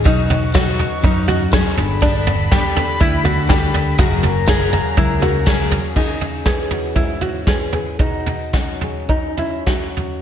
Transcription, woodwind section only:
X:1
M:4/4
L:1/8
Q:1/4=122
K:B
V:1 name="Woodwind section"
[Bdfc']6- [Bdfc'] [=A=d=gb]- | [=A=d=gb]8 | [Gcfa]8 | z8 |
z8 |]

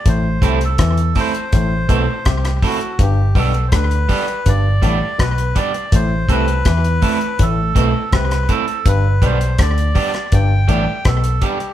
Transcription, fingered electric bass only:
X:1
M:4/4
L:1/16
Q:1/4=82
K:G
V:1 name="Fingered electric bass" clef=bass
A,,,2 C,,2 E,,2 z2 A,,,2 B,,, z C,,2 z2 | G,,,2 B,,,2 D,,2 z2 G,,,2 A,,, z B,,,2 z2 | A,,,2 C,,2 E,,2 z2 A,,,2 B,,, z C,,2 z2 | G,,,2 B,,,2 D,,2 z2 G,,,2 A,,, z B,,,2 z2 |]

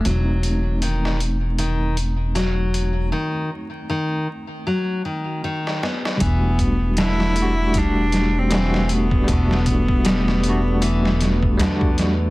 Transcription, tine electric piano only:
X:1
M:4/4
L:1/8
Q:"Swing 16ths" 1/4=78
K:Em
V:1 name="Tine electric piano"
[A,C^D]8 | z8 | [G,A,DF]3 [G,A,DF]3 [G,A,DF]2 | [G,A,DF]3 [G,A,DF]3 [G,A,DF]2 |]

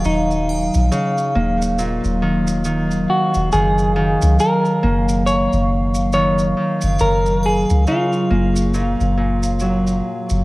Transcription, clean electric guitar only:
X:1
M:4/4
L:1/8
Q:"Swing 16ths" 1/4=69
K:Gb
V:1 name="Clean electric guitar"
E3 z4 G | A2 B2 d2 d2 | B A F4- F z |]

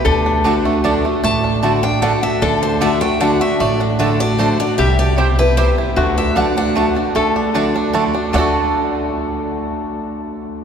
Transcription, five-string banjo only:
X:1
M:3/4
L:1/8
Q:1/4=152
K:Dmix
V:1 name="Five-string banjo"
D D D A, D A, | A, D A, D D D | D D D A, D A, | A, D A, D D D |
G,2 G E G E | A, D D D A, D | A, D D D A, D | [A,DFA]6- |
[A,DFA]6 |]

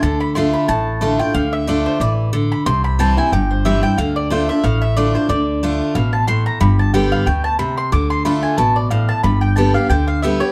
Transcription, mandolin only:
X:1
M:4/4
L:1/8
Q:"Swing" 1/4=182
K:Ddor
V:1 name="Mandolin"
a b c' b a3 g | f e d c d z2 b | c' b a ^g =g c e g | f d c e f e d c |
d3 z f a c' _b | b a g f g a b c' | d' c' b ^g a d f a | b g a f g f e ^c |]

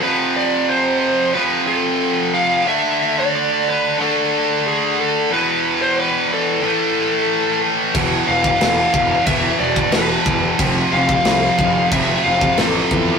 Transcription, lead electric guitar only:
X:1
M:4/4
L:1/16
Q:1/4=91
K:none
V:1 name="Lead electric guitar"
B2 d2 c4 B2 A4 f2 | e3 d3 B2 A4 ^G2 A2 | B3 c B2 A8 z2 | z2 f6 e2 d2 B3 z |
z2 f6 e2 f2 A4 |]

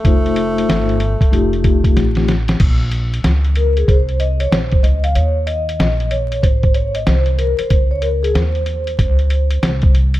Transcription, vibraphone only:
X:1
M:4/4
L:1/16
Q:"Swing 16ths" 1/4=94
K:Bbdor
V:1 name="Vibraphone"
[=A,EFc]6 z2 [A,EFG]6 z2 | z6 B A c2 e d c2 e f | d2 e4 d2 c2 d e c2 B c- | c d B A c8- c2 z2 |]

